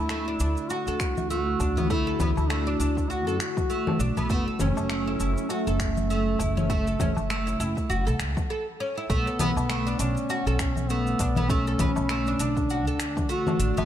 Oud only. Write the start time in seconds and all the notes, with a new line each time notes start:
0.10 A3
0.28 D4
0.40 D4
0.70 F#4
0.88 A4
1.30 A3
1.60 D4
1.77 B3
1.90 A3
2.07 A4
2.20 B3
2.50 A3
2.67 D4
2.80 D4
3.10 F#4
3.27 A4
3.70 A3
4.00 D4
4.17 B3
4.30 A3
4.48 A4
4.61 C#4
4.90 A3
5.08 E4
5.20 E4
5.50 F#4
5.67 A4
6.10 A3
6.40 E4
6.57 C#4
6.70 A3
6.87 A4
7.01 C#4
7.30 A3
7.47 E4
7.60 E4
7.90 F#4
8.07 A4
8.50 A4
8.80 C#4
8.97 E4
9.10 A3
9.27 A4
9.40 B3
9.69 A3
9.87 D4
10.00 D4
10.30 F#4
10.47 A4
10.90 A3
11.21 D4
11.37 B3
11.50 A3
11.67 A4
11.80 B3
12.10 A3
12.28 D4
12.40 D4
12.70 F#4
12.87 A4
13.29 A3
13.60 D4
13.77 B3